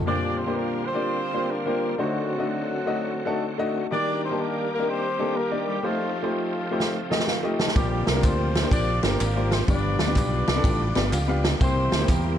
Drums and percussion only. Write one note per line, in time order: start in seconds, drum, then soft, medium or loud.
6.80 snare medium
7.12 snare medium
7.20 snare medium
7.28 snare medium
7.59 snare loud
7.68 snare medium
7.76 kick loud
7.76 ride medium
7.76 tambourine medium
8.07 snare loud
8.07 ride medium
8.07 tambourine medium
8.23 kick medium
8.23 clap medium
8.23 ride medium
8.23 tambourine medium
8.55 snare loud
8.55 ride soft
8.55 tambourine soft
8.71 kick loud
8.71 ride medium
8.71 tambourine medium
9.03 snare loud
9.03 ride medium
9.03 tambourine soft
9.20 clap medium
9.20 ride medium
9.20 tambourine medium
9.52 snare loud
9.52 ride medium
9.52 tambourine medium
9.68 kick loud
9.68 ride medium
9.68 tambourine medium
9.99 snare loud
9.99 ride medium
9.99 tambourine medium
10.15 kick loud
10.15 clap loud
10.15 ride medium
10.15 tambourine medium
10.47 snare loud
10.47 ride soft
10.47 tambourine soft
10.64 kick loud
10.64 ride medium
10.64 tambourine medium
10.95 snare loud
10.95 ride medium
10.95 tambourine soft
11.13 clap medium
11.13 ride medium
11.13 tambourine medium
11.44 snare loud
11.44 ride medium
11.44 tambourine medium
11.61 kick loud
11.61 ride medium
11.61 tambourine medium
11.92 snare loud
11.92 ride medium
11.92 tambourine medium
12.08 kick medium
12.08 clap medium
12.08 ride medium
12.08 tambourine medium